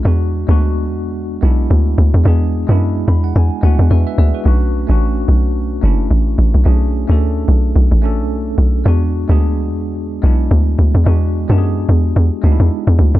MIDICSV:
0, 0, Header, 1, 3, 480
1, 0, Start_track
1, 0, Tempo, 550459
1, 44, Time_signature, 4, 2, 24, 8
1, 11507, End_track
2, 0, Start_track
2, 0, Title_t, "Tine electric piano"
2, 0, Program_c, 0, 4
2, 0, Control_c, 0, 64, 127
2, 28, Note_on_c, 0, 56, 88
2, 41, Note_on_c, 0, 59, 85
2, 52, Note_on_c, 0, 62, 84
2, 54, Control_c, 0, 64, 0
2, 63, Note_on_c, 0, 66, 95
2, 192, Control_c, 0, 64, 127
2, 332, Note_off_c, 0, 56, 0
2, 338, Note_off_c, 0, 59, 0
2, 343, Note_off_c, 0, 62, 0
2, 349, Note_off_c, 0, 66, 0
2, 410, Note_on_c, 0, 56, 89
2, 420, Note_on_c, 0, 59, 85
2, 431, Note_on_c, 0, 62, 83
2, 443, Note_on_c, 0, 66, 104
2, 1081, Note_off_c, 0, 56, 0
2, 1086, Note_off_c, 0, 59, 0
2, 1091, Note_off_c, 0, 62, 0
2, 1097, Note_off_c, 0, 66, 0
2, 1230, Note_on_c, 0, 56, 91
2, 1242, Note_on_c, 0, 59, 85
2, 1253, Note_on_c, 0, 62, 86
2, 1264, Note_on_c, 0, 64, 104
2, 1828, Note_off_c, 0, 56, 0
2, 1834, Note_off_c, 0, 59, 0
2, 1840, Note_off_c, 0, 62, 0
2, 1845, Note_off_c, 0, 64, 0
2, 1953, Note_on_c, 0, 56, 90
2, 1964, Note_on_c, 0, 59, 83
2, 1975, Note_on_c, 0, 62, 80
2, 1986, Note_on_c, 0, 68, 97
2, 2254, Note_off_c, 0, 56, 0
2, 2260, Note_off_c, 0, 59, 0
2, 2265, Note_off_c, 0, 62, 0
2, 2271, Note_off_c, 0, 68, 0
2, 2329, Note_on_c, 0, 56, 90
2, 2340, Note_on_c, 0, 59, 83
2, 2352, Note_on_c, 0, 62, 80
2, 2363, Note_on_c, 0, 64, 102
2, 2687, Note_on_c, 0, 83, 71
2, 2815, Note_off_c, 0, 83, 0
2, 2825, Note_on_c, 0, 78, 73
2, 2918, Note_off_c, 0, 78, 0
2, 2927, Note_on_c, 0, 80, 85
2, 3000, Note_off_c, 0, 56, 0
2, 3006, Note_off_c, 0, 59, 0
2, 3012, Note_off_c, 0, 62, 0
2, 3018, Note_off_c, 0, 64, 0
2, 3149, Note_off_c, 0, 80, 0
2, 3149, Note_on_c, 0, 56, 92
2, 3162, Note_on_c, 0, 59, 82
2, 3167, Note_on_c, 0, 78, 78
2, 3172, Note_on_c, 0, 62, 82
2, 3184, Note_on_c, 0, 66, 97
2, 3389, Note_off_c, 0, 78, 0
2, 3401, Note_off_c, 0, 66, 0
2, 3406, Note_on_c, 0, 71, 65
2, 3407, Note_on_c, 0, 76, 71
2, 3412, Note_on_c, 0, 66, 53
2, 3536, Note_off_c, 0, 76, 0
2, 3537, Note_off_c, 0, 71, 0
2, 3540, Note_off_c, 0, 66, 0
2, 3547, Note_on_c, 0, 76, 74
2, 3552, Note_on_c, 0, 71, 62
2, 3638, Note_off_c, 0, 76, 0
2, 3643, Note_off_c, 0, 71, 0
2, 3648, Note_on_c, 0, 74, 75
2, 3648, Note_on_c, 0, 76, 75
2, 3654, Note_on_c, 0, 68, 67
2, 3748, Note_off_c, 0, 56, 0
2, 3754, Note_off_c, 0, 59, 0
2, 3759, Note_off_c, 0, 62, 0
2, 3778, Note_off_c, 0, 74, 0
2, 3781, Note_off_c, 0, 68, 0
2, 3786, Note_on_c, 0, 71, 66
2, 3791, Note_on_c, 0, 66, 57
2, 3869, Note_off_c, 0, 76, 0
2, 3871, Note_on_c, 0, 57, 87
2, 3882, Note_on_c, 0, 61, 80
2, 3893, Note_on_c, 0, 62, 80
2, 3894, Note_off_c, 0, 66, 0
2, 3896, Control_c, 0, 64, 0
2, 3904, Note_on_c, 0, 66, 100
2, 4013, Note_off_c, 0, 71, 0
2, 4033, Control_c, 0, 64, 127
2, 4173, Note_off_c, 0, 57, 0
2, 4179, Note_off_c, 0, 61, 0
2, 4184, Note_off_c, 0, 62, 0
2, 4190, Note_off_c, 0, 66, 0
2, 4248, Note_on_c, 0, 57, 90
2, 4260, Note_on_c, 0, 61, 85
2, 4271, Note_on_c, 0, 62, 84
2, 4283, Note_on_c, 0, 66, 99
2, 4920, Note_off_c, 0, 57, 0
2, 4926, Note_off_c, 0, 61, 0
2, 4931, Note_off_c, 0, 62, 0
2, 4937, Note_off_c, 0, 66, 0
2, 5069, Note_on_c, 0, 57, 92
2, 5081, Note_on_c, 0, 61, 83
2, 5092, Note_on_c, 0, 62, 80
2, 5103, Note_on_c, 0, 64, 98
2, 5668, Note_off_c, 0, 57, 0
2, 5674, Note_off_c, 0, 61, 0
2, 5680, Note_off_c, 0, 62, 0
2, 5685, Note_off_c, 0, 64, 0
2, 5789, Note_on_c, 0, 57, 91
2, 5800, Note_on_c, 0, 61, 85
2, 5812, Note_on_c, 0, 62, 82
2, 5823, Note_on_c, 0, 68, 99
2, 6092, Note_off_c, 0, 57, 0
2, 6098, Note_off_c, 0, 61, 0
2, 6103, Note_off_c, 0, 62, 0
2, 6109, Note_off_c, 0, 68, 0
2, 6169, Note_on_c, 0, 57, 89
2, 6181, Note_on_c, 0, 61, 81
2, 6192, Note_on_c, 0, 62, 84
2, 6204, Note_on_c, 0, 69, 102
2, 6841, Note_off_c, 0, 57, 0
2, 6846, Note_off_c, 0, 61, 0
2, 6852, Note_off_c, 0, 62, 0
2, 6858, Note_off_c, 0, 69, 0
2, 6991, Note_on_c, 0, 57, 89
2, 7002, Note_on_c, 0, 61, 86
2, 7013, Note_on_c, 0, 62, 86
2, 7025, Note_on_c, 0, 69, 102
2, 7589, Note_off_c, 0, 57, 0
2, 7594, Note_off_c, 0, 61, 0
2, 7600, Note_off_c, 0, 62, 0
2, 7606, Note_off_c, 0, 69, 0
2, 7710, Note_on_c, 0, 56, 88
2, 7721, Note_on_c, 0, 59, 81
2, 7732, Note_on_c, 0, 62, 81
2, 7733, Control_c, 0, 64, 0
2, 7743, Note_on_c, 0, 66, 98
2, 7893, Control_c, 0, 64, 127
2, 8013, Note_off_c, 0, 56, 0
2, 8018, Note_off_c, 0, 59, 0
2, 8023, Note_off_c, 0, 62, 0
2, 8029, Note_off_c, 0, 66, 0
2, 8091, Note_on_c, 0, 56, 94
2, 8102, Note_on_c, 0, 59, 84
2, 8112, Note_on_c, 0, 62, 84
2, 8123, Note_on_c, 0, 68, 102
2, 8761, Note_off_c, 0, 56, 0
2, 8767, Note_off_c, 0, 59, 0
2, 8772, Note_off_c, 0, 62, 0
2, 8778, Note_off_c, 0, 68, 0
2, 8911, Note_on_c, 0, 56, 93
2, 8922, Note_on_c, 0, 59, 81
2, 8934, Note_on_c, 0, 62, 83
2, 8945, Note_on_c, 0, 64, 99
2, 9509, Note_off_c, 0, 56, 0
2, 9514, Note_off_c, 0, 59, 0
2, 9520, Note_off_c, 0, 62, 0
2, 9526, Note_off_c, 0, 64, 0
2, 9629, Note_on_c, 0, 56, 93
2, 9640, Note_on_c, 0, 59, 80
2, 9651, Note_on_c, 0, 62, 82
2, 9663, Note_on_c, 0, 66, 93
2, 9932, Note_off_c, 0, 56, 0
2, 9938, Note_off_c, 0, 59, 0
2, 9943, Note_off_c, 0, 62, 0
2, 9949, Note_off_c, 0, 66, 0
2, 10008, Note_on_c, 0, 56, 90
2, 10020, Note_on_c, 0, 59, 84
2, 10031, Note_on_c, 0, 62, 85
2, 10042, Note_on_c, 0, 67, 79
2, 10080, Note_off_c, 0, 67, 0
2, 10099, Note_on_c, 0, 68, 104
2, 10680, Note_off_c, 0, 56, 0
2, 10686, Note_off_c, 0, 59, 0
2, 10691, Note_off_c, 0, 62, 0
2, 10725, Note_off_c, 0, 68, 0
2, 10829, Note_on_c, 0, 56, 90
2, 10840, Note_on_c, 0, 59, 86
2, 10851, Note_on_c, 0, 62, 84
2, 10863, Note_on_c, 0, 63, 77
2, 10919, Note_off_c, 0, 63, 0
2, 10919, Note_on_c, 0, 64, 98
2, 11428, Note_off_c, 0, 56, 0
2, 11433, Note_off_c, 0, 59, 0
2, 11439, Note_off_c, 0, 62, 0
2, 11473, Note_off_c, 0, 64, 0
2, 11507, End_track
3, 0, Start_track
3, 0, Title_t, "Log drum bass"
3, 0, Program_c, 1, 39
3, 44, Note_on_c, 1, 40, 114
3, 389, Note_off_c, 1, 40, 0
3, 424, Note_on_c, 1, 38, 104
3, 764, Note_on_c, 1, 40, 97
3, 777, Note_off_c, 1, 38, 0
3, 1209, Note_off_c, 1, 40, 0
3, 1246, Note_on_c, 1, 35, 101
3, 1463, Note_off_c, 1, 35, 0
3, 1487, Note_on_c, 1, 38, 105
3, 1704, Note_off_c, 1, 38, 0
3, 1726, Note_on_c, 1, 38, 102
3, 1852, Note_off_c, 1, 38, 0
3, 1866, Note_on_c, 1, 40, 96
3, 1957, Note_off_c, 1, 40, 0
3, 1964, Note_on_c, 1, 40, 111
3, 2310, Note_off_c, 1, 40, 0
3, 2344, Note_on_c, 1, 42, 91
3, 2654, Note_off_c, 1, 42, 0
3, 2684, Note_on_c, 1, 40, 96
3, 2902, Note_off_c, 1, 40, 0
3, 2926, Note_on_c, 1, 40, 103
3, 3052, Note_off_c, 1, 40, 0
3, 3165, Note_on_c, 1, 38, 93
3, 3291, Note_off_c, 1, 38, 0
3, 3305, Note_on_c, 1, 40, 95
3, 3396, Note_off_c, 1, 40, 0
3, 3406, Note_on_c, 1, 40, 93
3, 3532, Note_off_c, 1, 40, 0
3, 3646, Note_on_c, 1, 38, 90
3, 3772, Note_off_c, 1, 38, 0
3, 3885, Note_on_c, 1, 35, 111
3, 4230, Note_off_c, 1, 35, 0
3, 4265, Note_on_c, 1, 33, 97
3, 4575, Note_off_c, 1, 33, 0
3, 4607, Note_on_c, 1, 35, 95
3, 5050, Note_off_c, 1, 35, 0
3, 5085, Note_on_c, 1, 30, 89
3, 5303, Note_off_c, 1, 30, 0
3, 5324, Note_on_c, 1, 33, 101
3, 5543, Note_off_c, 1, 33, 0
3, 5565, Note_on_c, 1, 33, 96
3, 5691, Note_off_c, 1, 33, 0
3, 5705, Note_on_c, 1, 35, 90
3, 5796, Note_off_c, 1, 35, 0
3, 5805, Note_on_c, 1, 35, 111
3, 6150, Note_off_c, 1, 35, 0
3, 6185, Note_on_c, 1, 38, 92
3, 6494, Note_off_c, 1, 38, 0
3, 6524, Note_on_c, 1, 35, 95
3, 6743, Note_off_c, 1, 35, 0
3, 6764, Note_on_c, 1, 35, 98
3, 6891, Note_off_c, 1, 35, 0
3, 6902, Note_on_c, 1, 33, 89
3, 7140, Note_on_c, 1, 35, 90
3, 7154, Note_off_c, 1, 33, 0
3, 7452, Note_off_c, 1, 35, 0
3, 7481, Note_on_c, 1, 35, 102
3, 7701, Note_off_c, 1, 35, 0
3, 7722, Note_on_c, 1, 40, 109
3, 8068, Note_off_c, 1, 40, 0
3, 8103, Note_on_c, 1, 38, 94
3, 8445, Note_on_c, 1, 40, 102
3, 8458, Note_off_c, 1, 38, 0
3, 8889, Note_off_c, 1, 40, 0
3, 8925, Note_on_c, 1, 35, 91
3, 9143, Note_off_c, 1, 35, 0
3, 9164, Note_on_c, 1, 38, 107
3, 9383, Note_off_c, 1, 38, 0
3, 9405, Note_on_c, 1, 38, 85
3, 9531, Note_off_c, 1, 38, 0
3, 9545, Note_on_c, 1, 40, 88
3, 9636, Note_off_c, 1, 40, 0
3, 9647, Note_on_c, 1, 40, 113
3, 9991, Note_off_c, 1, 40, 0
3, 10024, Note_on_c, 1, 42, 103
3, 10334, Note_off_c, 1, 42, 0
3, 10366, Note_on_c, 1, 40, 93
3, 10584, Note_off_c, 1, 40, 0
3, 10605, Note_on_c, 1, 40, 106
3, 10731, Note_off_c, 1, 40, 0
3, 10844, Note_on_c, 1, 38, 90
3, 10971, Note_off_c, 1, 38, 0
3, 10984, Note_on_c, 1, 40, 93
3, 11076, Note_off_c, 1, 40, 0
3, 11225, Note_on_c, 1, 40, 98
3, 11316, Note_off_c, 1, 40, 0
3, 11324, Note_on_c, 1, 38, 99
3, 11451, Note_off_c, 1, 38, 0
3, 11463, Note_on_c, 1, 40, 90
3, 11507, Note_off_c, 1, 40, 0
3, 11507, End_track
0, 0, End_of_file